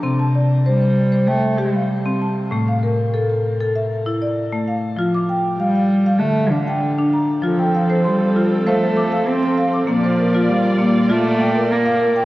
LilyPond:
<<
  \new Staff \with { instrumentName = "Marimba" } { \time 4/4 \key f \major \tempo 4 = 98 << { bes''16 a''16 d''8. c''8. g''8. f''8. a''8~ | a''16 f''16 bes'8. a'8. e''8. d''8. f''8~ | f''16 d'''16 g''8. f''8. a''8. g''8. bes''8~ | bes''16 g''16 f''8 c'''8. r16 f''8 d'''8. c'''8 d'''16~ |
d'''16 c''16 bes'8 f''8. r8. g''8. f''8 g''16 | } \\ { c'8 r8 c''8 r16 c''8 r16 g'8 r16 c'8 r16 | a8 r8 a'8 r16 a'8 r16 e'8 r16 a8 r16 | f'8 r8 f''8 r16 f''16 r8 d'8 r16 d'8 r16 | f'8 r16 c''8 r16 f'8 c''8 r16 f''8 r16 f''8 |
r8. f'8 r16 bes8 f'8 r16 bes'8 r16 bes'8 | } >> }
  \new Staff \with { instrumentName = "Marimba" } { \clef bass \time 4/4 \key f \major c1 | a,1 | f2 d2 | f1 |
bes1 | }
  \new Staff \with { instrumentName = "String section" } { \time 4/4 \key f \major r1 | r1 | r1 | <f c' a'>1 |
<bes, f' d''>1 | }
  \new Staff \with { instrumentName = "Cello" } { \clef bass \time 4/4 \key f \major r4 g4 a8 g4 r8 | r1 | r4 g4 a8 d4 r8 | f4 g4 a4 c'8. r16 |
f4 g4 a4 bes8. r16 | }
>>